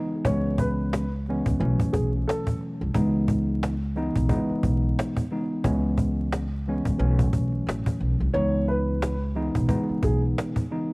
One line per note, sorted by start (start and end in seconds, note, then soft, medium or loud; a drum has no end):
0.00 0.23 C#2 medium
0.00 0.23 E3 medium
0.00 0.23 G#3 medium
0.00 0.23 B3 medium
0.00 0.23 D#4 medium
0.25 1.04 C#2 loud
0.25 1.42 C#2 loud
0.25 1.04 E3 medium
0.25 1.05 G#3 medium
0.25 1.05 B3 medium
0.25 1.05 C#4 loud
0.25 0.56 C#5 medium
0.25 cajon bass loud
0.58 1.09 B4 medium
0.58 cajon bass medium
0.93 cajon slap loud
0.93 cajon slap medium
1.13 cajon slap soft
1.26 1.59 C#2 medium
1.26 1.58 E3 medium
1.26 1.59 G#3 medium
1.26 1.59 B3 medium
1.26 1.59 C#4 loud
1.26 cajon slap soft
1.46 1.58 C#2 medium
1.46 cajon bass medium
1.59 1.77 B1 loud
1.59 2.85 B2 medium
1.59 2.86 E3 medium
1.59 2.86 F#3 medium
1.59 2.86 A3 medium
1.59 2.86 C#4 loud
1.59 cajon slap soft
1.80 cajon bass loud
1.93 2.22 B1 medium
1.93 2.11 G#4 medium
1.93 cajon bass loud
2.13 cajon slap soft
2.28 2.58 A4 medium
2.28 cajon slap loud
2.28 cajon slap medium
2.47 cajon bass loud
2.61 cajon slap soft
2.81 2.93 C2 medium
2.94 3.73 C#2 loud
2.94 4.12 C#2 loud
2.94 3.74 E3 medium
2.94 3.74 G#3 loud
2.94 3.74 B3 medium
2.94 3.74 D#4 medium
2.94 cajon bass loud
3.28 cajon bass loud
3.63 cajon slap loud
3.63 cajon slap medium
3.82 cajon slap soft
3.96 4.27 C#2 loud
3.96 4.27 E3 medium
3.96 4.28 G#3 medium
3.96 4.28 B3 medium
3.96 4.28 D#4 loud
3.96 cajon slap soft
4.16 4.27 B1 medium
4.16 cajon bass medium
4.28 5.23 C#2 medium
4.28 5.23 E3 medium
4.28 5.24 G#3 medium
4.28 5.24 B3 medium
4.28 5.24 D#4 medium
4.28 cajon bass loud
4.50 muted upright bass stroke soft
4.63 4.91 B1 medium
4.63 cajon bass loud
4.82 cajon slap soft
4.99 cajon slap loud
5.16 cajon bass loud
5.30 5.62 C#2 medium
5.30 5.62 E3 medium
5.30 5.63 G#3 medium
5.30 5.63 B3 medium
5.30 5.63 D#4 medium
5.30 cajon slap soft
5.64 6.43 C#2 loud
5.64 6.81 C#2 loud
5.64 6.43 E3 medium
5.64 6.44 G#3 medium
5.64 6.44 B3 medium
5.64 6.44 C#4 loud
5.64 cajon bass loud
5.98 cajon bass medium
6.33 cajon slap loud
6.33 cajon slap medium
6.52 cajon slap soft
6.66 6.98 C#2 medium
6.66 6.97 E3 medium
6.66 6.98 G#3 medium
6.66 6.99 B3 medium
6.66 6.98 C#4 loud
6.66 cajon slap soft
6.85 6.97 C#2 medium
6.85 cajon bass medium
6.98 7.27 B1 loud
6.98 8.25 B2 medium
6.98 8.25 E3 medium
6.98 8.25 F#3 medium
6.98 8.25 A3 medium
6.98 8.25 C#4 loud
6.98 cajon slap soft
7.19 cajon bass medium
7.33 7.61 B1 medium
7.33 cajon bass loud
7.52 cajon slap soft
7.67 7.83 A1 medium
7.67 cajon slap loud
7.67 cajon slap medium
7.86 cajon bass loud
8.00 8.17 B1 medium
8.00 cajon slap soft
8.20 8.32 C2 medium
8.33 9.13 C#2 medium
8.33 9.51 C#2 loud
8.33 9.13 E3 medium
8.33 9.13 G#3 medium
8.33 9.13 B3 medium
8.33 9.13 D#4 loud
8.33 8.64 C#5 loud
8.33 cajon slap soft
8.68 9.18 B4 medium
8.68 cajon slap soft
9.02 cajon slap loud
9.02 cajon slap medium
9.22 cajon slap soft
9.35 9.67 C#2 loud
9.35 9.67 E3 medium
9.35 9.67 G#3 medium
9.35 9.67 B3 medium
9.35 9.67 D#4 loud
9.35 cajon slap soft
9.55 9.67 B1 medium
9.55 cajon bass loud
9.68 10.63 C#2 medium
9.68 10.63 E3 medium
9.68 10.63 G#3 medium
9.68 10.63 B3 medium
9.68 10.63 D#4 medium
9.68 cajon bass loud
9.89 muted upright bass stroke soft
10.03 10.31 B1 medium
10.03 10.21 G#4 medium
10.03 cajon bass loud
10.22 cajon slap soft
10.38 cajon slap loud
10.38 cajon slap medium
10.56 cajon bass loud
10.70 10.93 C#2 medium
10.70 10.93 E3 medium
10.70 10.93 G#3 medium
10.70 10.93 B3 medium
10.70 10.93 D#4 medium
10.70 cajon slap soft